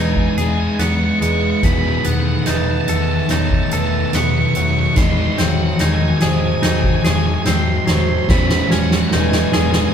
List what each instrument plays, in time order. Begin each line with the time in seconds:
Already playing: picked electric bass E1, clean electric guitar E2 B3 D#4 G#4, distorted electric guitar E3 G#3, ambient pad E3 D#4 G#4, vibraphone B4
0.04 lead electric guitar G#5
0.13 lead electric guitar G#5, kick
0.22 lead electric guitar G#5
0.29 lead electric guitar G#5
0.36 picked electric bass E1, distorted electric guitar E3 G#3, clean electric guitar G#4, lead electric guitar G#5, closed hi-hat
0.44 lead electric guitar G#5
0.51 lead electric guitar G#5
0.60 lead electric guitar G#5
0.67 lead electric guitar G#5
0.75 picked electric bass E2, lead electric guitar G#5
0.79 distorted electric guitar E3 G#3, clean electric guitar B3, lead electric guitar C#6, snare, closed hi-hat
0.88 lead electric guitar C#6
0.95 lead electric guitar C#6
1.04 lead electric guitar C#6
1.10 lead electric guitar C#6
1.20 picked electric bass E1, distorted electric guitar E3 G#3, clean electric guitar G#3, vibraphone B4, lead electric guitar C#6, closed hi-hat
1.26 lead electric guitar C#6
1.35 lead electric guitar C#6
1.41 lead electric guitar C#6
1.50 lead electric guitar C#6
1.57 lead electric guitar C#6
1.63 picked electric bass E1, clean electric guitar E2, distorted electric guitar B2 D#3 F#3, ambient pad A3 B3, lead electric guitar B5, kick, snare, closed hi-hat
1.72 lead electric guitar B5
1.79 lead electric guitar B5
1.86 lead electric guitar B5
1.93 lead electric guitar B5
1.99 lead electric guitar B5
2.04 picked electric bass E1, distorted electric guitar B2 D#3, clean electric guitar B3, lead electric guitar F#5, closed hi-hat
2.12 lead electric guitar F#5
2.20 lead electric guitar F#5
2.27 lead electric guitar F#5
2.35 lead electric guitar F#5
2.43 clean electric guitar D#4, lead electric guitar F#5, snare, closed hi-hat
2.47 picked electric bass E1, distorted electric guitar B2 D#3, vibraphone B4, lead electric guitar A5
2.57 lead electric guitar A5
2.64 lead electric guitar A5
2.72 lead electric guitar A5
2.81 lead electric guitar A5
2.88 picked electric bass E1, distorted electric guitar B2 D#3, clean electric guitar A4, lead electric guitar A5, closed hi-hat
2.96 lead electric guitar A5
3.04 lead electric guitar A5
3.12 lead electric guitar A5
3.19 lead electric guitar A5
3.29 picked electric bass E1, distorted electric guitar B2 D#3, clean electric guitar D#4, vibraphone C#5, lead electric guitar A5, snare, closed hi-hat
3.39 lead electric guitar A5
3.47 lead electric guitar A5, kick
3.54 lead electric guitar A5
3.63 lead electric guitar A5
3.70 picked electric bass E1, distorted electric guitar B2 D#3, clean electric guitar A4, vibraphone B4, lead electric guitar A5, closed hi-hat
3.77 lead electric guitar A5
3.87 lead electric guitar A5
3.93 lead electric guitar A5
4.01 lead electric guitar A5
4.10 picked electric bass E2, distorted electric guitar B2, lead electric guitar A5, snare, closed hi-hat
4.14 distorted electric guitar D#3, clean electric guitar B3, lead electric guitar C#6
4.24 lead electric guitar C#6
4.30 lead electric guitar C#6
4.38 lead electric guitar C#6
4.46 lead electric guitar C#6
4.54 picked electric bass E1, distorted electric guitar B2 D#3, clean electric guitar F#3, lead electric guitar C#6, closed hi-hat
4.62 lead electric guitar C#6
4.70 lead electric guitar C#6
4.79 lead electric guitar C#6
4.87 lead electric guitar C#6
4.96 picked electric bass E1, clean electric guitar E2, distorted electric guitar G#2 D#3 G#3, ambient pad C3 G#3 F#4, vibraphone D#5, lead electric guitar C6, kick, snare, closed hi-hat
5.04 lead electric guitar C6
5.12 lead electric guitar C6
5.18 lead electric guitar C6
5.26 lead electric guitar C6
5.33 lead electric guitar C6
5.38 picked electric bass E1, distorted electric guitar G#2 D#3, clean electric guitar C4, vibraphone C#5, lead electric guitar F#5, snare, closed hi-hat
5.49 lead electric guitar F#5
5.58 lead electric guitar F#5
5.66 lead electric guitar F#5
5.74 lead electric guitar F#5
5.79 picked electric bass E1, distorted electric guitar G#2 D#3, clean electric guitar D#4, vibraphone D#5, lead electric guitar G#5, snare, closed hi-hat
5.88 lead electric guitar G#5
5.95 lead electric guitar G#5
6.03 lead electric guitar G#5
6.10 lead electric guitar G#5
6.18 lead electric guitar G#5, snare, closed hi-hat
6.22 picked electric bass E1, distorted electric guitar G#2 D#3, clean electric guitar G#4, vibraphone C5, lead electric guitar G#5
6.33 lead electric guitar G#5
6.40 lead electric guitar G#5
6.47 lead electric guitar G#5
6.55 lead electric guitar G#5
6.63 picked electric bass E1, distorted electric guitar G#2 D#3, clean electric guitar D#4, lead electric guitar G#5, snare, closed hi-hat
6.72 lead electric guitar G#5
6.80 lead electric guitar G#5, kick
6.87 lead electric guitar G#5
6.96 lead electric guitar G#5
7.03 picked electric bass E1, distorted electric guitar G#2 D#3, clean electric guitar G#4, lead electric guitar G#5, snare, closed hi-hat
7.11 lead electric guitar G#5
7.19 lead electric guitar G#5
7.26 lead electric guitar G#5
7.34 lead electric guitar G#5
7.42 distorted electric guitar G#2, lead electric guitar G#5, snare, closed hi-hat
7.46 picked electric bass E2, distorted electric guitar D#3, clean electric guitar C4, lead electric guitar C6
7.55 lead electric guitar C6
7.62 lead electric guitar C6
7.69 lead electric guitar C6
7.78 lead electric guitar C6
7.86 picked electric bass E1, distorted electric guitar G#2 D#3, clean electric guitar F#3, vibraphone C5, lead electric guitar C6, snare, closed hi-hat
7.94 lead electric guitar C6
8.01 lead electric guitar C6
8.09 lead electric guitar C6
8.18 lead electric guitar C6
8.24 lead electric guitar C6
8.28 picked electric bass E1, clean electric guitar E2, distorted electric guitar E3 G#3 C#4, ambient pad E3 C#4 D#4, lead electric guitar B5, kick, snare
8.38 lead electric guitar B5
8.47 lead electric guitar B5, snare
8.52 lead electric guitar B5
8.60 lead electric guitar B5
8.70 picked electric bass E1, distorted electric guitar E3 G#3, clean electric guitar C#4, lead electric guitar F#5, snare
8.80 lead electric guitar F#5
8.86 lead electric guitar F#5
8.91 lead electric guitar F#5, snare
9.01 lead electric guitar F#5
9.08 lead electric guitar F#5, snare
9.12 picked electric bass E1, distorted electric guitar E3 G#3, clean electric guitar D#4, vibraphone B4, lead electric guitar G#5
9.23 lead electric guitar G#5
9.30 lead electric guitar G#5, snare
9.40 lead electric guitar G#5
9.47 lead electric guitar G#5
9.52 picked electric bass E1, distorted electric guitar E3 G#3, clean electric guitar G#4, snare
9.56 lead electric guitar G#5
9.63 lead electric guitar G#5
9.71 lead electric guitar G#5, snare
9.80 lead electric guitar G#5
9.88 lead electric guitar G#5